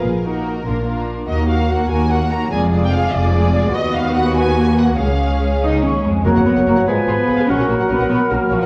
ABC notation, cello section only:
X:1
M:6/8
L:1/8
Q:3/8=97
K:Ebm
V:1 name="Cello section" clef=bass
B,,3 B,,3 | E,,3 E,,3 | F,,3 F,,3 | [K:F#] D,,6 |
C,,3 [C,,D] [D,,C] [E,,G,] | A, B, A, _A, _C2 | C A, B, B, A, E, |]